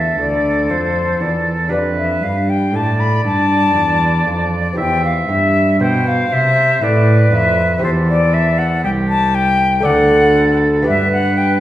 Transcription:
Already playing: lute E2 D4 F4 A4, cello E2, oboe A4, flute E5
0.18 cello D2, lute D2, flute D5
0.70 cello F2, lute F2, flute C5
1.20 cello E2, lute E2, flute D5
1.68 lute F2 D4 G4 B4, oboe B4
1.72 cello F2, flute D5
1.97 flute E5
2.23 cello G2, lute G2, flute F5
2.49 flute G5
2.74 lute A2, cello A2, oboe D5, flute A5
3.00 flute B5
3.24 lute G2, cello G2, flute A5
3.75 lute E2, cello E2
4.27 lute F2, cello F2
4.73 lute C4 G4 C5
4.77 lute E2, cello E2, oboe E5, flute G5
5.05 flute F5
5.29 lute G2, cello G2, flute E5
5.80 lute B2, cello B2, oboe C5, flute G5
6.08 flute F5
6.30 lute C3, cello C3, flute E5
6.81 lute A2, cello A2, oboe B4, flute D5
7.32 lute F2, cello F2, flute E5
7.78 lute C4 G4 C5
7.83 lute E2, cello E2, oboe A4, flute C5
8.09 flute D5
8.34 flute E5
8.58 flute F#5
8.84 cello C2, oboe G4, flute G5
9.09 flute A5
9.35 flute G5
9.80 lute A3 A4 D5
9.85 lute D2, cello D2, oboe A4, flute F#5
10.82 lute B3 G4 B4
10.87 lute G2, cello G2, oboe B4, flute E5
11.12 flute F#5
11.38 flute G5

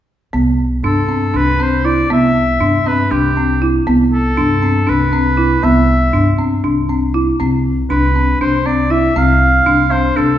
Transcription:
0.33 upright bass C2, marimba B3
0.83 upright bass G2, marimba D4, oboe A4
1.09 marimba C4
1.34 upright bass C2, marimba D4, oboe B4
1.60 marimba C4, oboe C5
1.85 marimba E4, oboe D5
2.10 upright bass C2, marimba B3, oboe E5
2.60 upright bass G2, marimba D4
2.86 marimba C4, oboe B4
3.11 upright bass C2, marimba D4, oboe G4
3.37 marimba C4
3.62 marimba E4
3.87 upright bass C2, marimba B3
4.13 oboe A4
4.37 upright bass G2, marimba D4
4.62 marimba C4
4.87 upright bass C2, marimba D4, oboe B4
5.13 marimba C4
5.37 marimba E4
5.63 upright bass C2, marimba B3, oboe E5
6.13 upright bass G2, marimba D4
6.38 marimba C4
6.64 upright bass C2, marimba D4
6.89 marimba C4
7.14 marimba E4
7.40 upright bass C2, marimba C4
7.90 upright bass C2, marimba D4, oboe B4
8.16 marimba C4
8.41 upright bass C2, marimba D4, oboe C5
8.66 marimba C4, oboe D5
8.90 marimba E4, oboe E5
9.16 upright bass C2, marimba C4, oboe F5
9.66 upright bass C2, marimba D4
9.91 marimba C4, oboe C5
10.17 upright bass C2, marimba D4, oboe A4

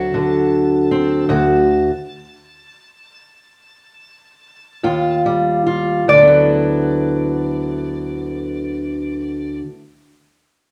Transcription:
Already playing: steel-string acoustic guitar D2 D3 F#3 C4 F#4, resonator guitar played with a steel bar A5
0.14 steel-string acoustic guitar D3
0.91 steel-string acoustic guitar C4
1.29 steel-string acoustic guitar D2 F#4
4.83 steel-string acoustic guitar D#2 F4
5.26 steel-string acoustic guitar G3
5.66 steel-string acoustic guitar F4
6.08 steel-string acoustic guitar D2, resonator guitar played with a steel bar D5
6.13 steel-string acoustic guitar D3
6.18 steel-string acoustic guitar F#3
6.22 steel-string acoustic guitar B3
6.27 steel-string acoustic guitar E4

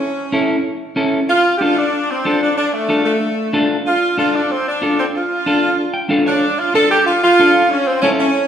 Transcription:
Already playing: saxophone section C#4
0.32 clean electric guitar C#4 E4 A4
0.96 clean electric guitar C#4 E4 A4
1.29 saxophone section F4
1.57 clean electric guitar D4 F4, saxophone section G4
1.62 saxophone section F4, clean electric guitar A4
1.78 saxophone section D4
2.10 saxophone section C4
2.25 clean electric guitar D4 F4 A4
2.43 saxophone section D4
2.57 saxophone section D4
2.73 saxophone section A3
2.89 clean electric guitar D4 F4 A4
3.04 saxophone section A3
3.53 clean electric guitar D4 F4 A4
3.86 saxophone section F4
4.18 clean electric guitar D4 F4 A4, saxophone section F4
4.35 saxophone section D4
4.51 saxophone section C4
4.68 saxophone section D4
4.82 clean electric guitar D4 F4 A4
4.99 saxophone section C4
5.17 saxophone section F4
5.46 clean electric guitar D4 F4 A4
5.94 clean electric guitar G5
6.09 clean electric guitar D4 F4 A4 F5
6.26 saxophone section D4, clean electric guitar C#5
6.59 saxophone section F4
6.74 clean electric guitar D4 F4 A4, saxophone section A4
6.91 saxophone section G4
7.06 saxophone section F4
7.24 saxophone section F4
7.39 clean electric guitar D4 F4 A4
7.71 saxophone section C#4
7.87 saxophone section C4
8.02 saxophone section C#4, clean electric guitar C#4 E4 A4
8.19 saxophone section C#4

